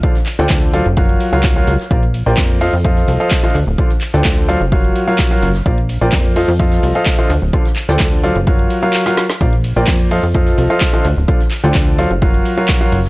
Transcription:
<<
  \new Staff \with { instrumentName = "Upright piano" } { \time 4/4 \key d \phrygian \tempo 4 = 128 <d f' a' c'' d'' f''>16 r8 <d f' a' c'' d'' g''>8. <ges f' a' c'' d'' f''>16 r16 <ges f' ges' bes' des'' f''>8. <ges f' ges' bes' des'' f''>8 <ges f' ges' bes' des'' f''>16 r8 | <bes f' bes' c'' d'' f''>16 r8 <bes f' bes' c'' d'' g''>8. <f f' a' c'' ees'' f''>16 r16 <f f' a' c'' ees'' f''>8. <f f' a' c'' ees'' f''>8 <d f' a' c'' ees'' f''>16 r8 | <d f' a' c'' d'' f''>16 r8 <d f' a' c'' d'' g''>8. <ges f' a' c'' d'' f''>16 r16 <ges f' ges' bes' des'' f''>8. <ges f' ges' bes' des'' f''>8 <ges f' ges' bes' des'' f''>16 r8 | <bes f' bes' c'' d'' f''>16 r8 <bes f' bes' c'' d'' g''>8. <f f' a' c'' ees'' f''>16 r16 <f f' a' c'' ees'' f''>8. <f f' a' c'' ees'' f''>8 <d f' a' c'' ees'' f''>16 r8 |
<d f' a' c'' d'' f''>16 r8 <d f' a' c'' d'' g''>8. <ges f' a' c'' d'' f''>16 r16 <ges f' ges' bes' des'' f''>8. <ges f' ges' bes' des'' f''>8 <ges f' ges' bes' des'' f''>16 r8 | <bes f' bes' c'' d'' f''>16 r8 <bes f' bes' c'' d'' g''>8. <f f' a' c'' ees'' f''>16 r16 <f f' a' c'' ees'' f''>8. <f f' a' c'' ees'' f''>8 <d f' a' c'' ees'' f''>16 r8 | <d f' a' c'' d'' f''>16 r8 <d f' a' c'' d'' g''>8. <ges f' a' c'' d'' f''>16 r16 <ges f' ges' bes' des'' f''>8. <ges f' ges' bes' des'' f''>8 <ges f' ges' bes' des'' f''>16 r8 | }
  \new Staff \with { instrumentName = "Analog synth bass" } { \clef bass \time 4/4 \key d \phrygian r8. d,16 d,8. ges,,8. r16 des,8. des,16 r16 | bes,,8. bes,,16 f,8. f,8. c,16 r8. d,16 d,,16 | r8. d,16 d,8. ges,,8. r4 ges,,8 | bes,,8. bes,,16 f,8. f,8. c,16 r8. d,16 d,,16 |
r8. d,16 d,8. ges,,8. r4. | bes,,8. bes,,16 f,8. f,8. c,16 r8. d,16 d,,16 | r8. d,16 d,8. ges,,8. r4 ges,,8 | }
  \new DrumStaff \with { instrumentName = "Drums" } \drummode { \time 4/4 <hh bd tamb>16 <hh sn>16 <hc hho tamb>16 hh16 <hc hho bd sn tamb>16 hh16 <hho tamb>16 hh16 <hh bd tamb>16 hh16 <hho tamb>16 hh16 <hc hh bd sn tamb>16 hh16 <hho tamb>16 <hh sn>16 | <hh bd tamb>16 hh16 <hho tamb>8 <hc hh bd sn tamb>16 hh16 hho16 hh16 <hh bd tamb>16 <hh sn>16 <hho tamb>16 hh16 <hc hh bd sn tamb>16 hh16 <hho tamb>8 | <hh bd tamb>16 <hh sn>16 <hc hho tamb>16 hh16 <hc hh bd sn tamb>16 hh16 <hho tamb>16 hh16 <hh bd tamb>16 hh16 <hho tamb>16 hh16 <hc hh bd sn tamb>16 hh16 <hho tamb>16 sn16 | <hh bd tamb>16 hh16 <hho tamb>8 <hc hh bd sn tamb>16 hh16 hho16 hh16 <hh bd tamb>16 <hh sn>16 <hho tamb>16 hh16 <hc hh bd sn tamb>16 hh16 <hho tamb>8 |
<hh bd tamb>16 <hh sn>16 <hc hho tamb>16 hh16 <hc hho bd sn tamb>16 hh16 <hho tamb>16 hh16 <hh bd tamb>16 hh16 <hho tamb>16 hh16 <hc hh sn tamb>16 <hh sn>16 <hho sn tamb>16 <hh sn>16 | <hh bd tamb>16 hh16 <hho tamb>8 <hc hh bd sn tamb>16 hh16 hho16 hh16 <hh bd tamb>16 <hh sn>16 <hho tamb>16 hh16 <hc hh bd sn tamb>16 hh16 <hho tamb>8 | <hh bd tamb>16 <hh sn>16 <hc hho tamb>16 hh16 <hc hh bd sn tamb>16 hh16 <hho tamb>16 hh16 <hh bd tamb>16 hh16 <hho tamb>16 hh16 <hc hh bd sn tamb>16 hh16 <hho tamb>16 sn16 | }
>>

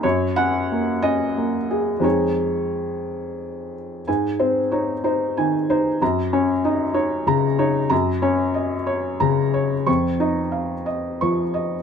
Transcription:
\new Staff \with { instrumentName = "Felt piano" } { \time 6/8 \key des \major \tempo 4. = 60 << { des''8 ges''4 ees''4. | des''2~ des''8 r8 | aes''8 c''8 des''8 c''8 aes''8 c''8 | bes''8 des''8 ees''8 des''8 bes''8 des''8 |
bes''8 des''8 ees''8 des''8 bes''8 des''8 | des'''8 ees''8 f''8 ees''8 des'''8 ees''8 | } \\ { ges,8 des'8 bes8 des'8 bes8 aes'8 | <f, aes ees' aes'>2. | aes,8 c'8 ees'8 ees'8 ees8 ees'8 | ges,8 des'8 ees'8 ees'8 des8 ees'8 |
ges,8 des'4 r8 des4 | f,8 ees'4 r8 f4 | } >> }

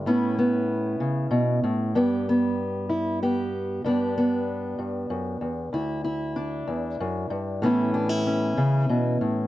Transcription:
\new Staff \with { instrumentName = "Steel-string acoustic guitar" } { \time 6/8 \key a \mixolydian \tempo 4. = 63 << { <b cis' e'>8 b2~ b8 | <b g'>8 b4 e'8 <b g'>4 | <b d' g'>8 b2~ b8 | e'8 e'8 d'2 |
<e b cis' e'>8 d'16 e'16 cis'2 | } \\ { a,4. cis8 b,8 a,8 | g,2. | g,4. g,8 fis,8 e,8 | d,4. e,8 fis,8 g,8 |
a,4. cis8 b,8 a,8 | } >> }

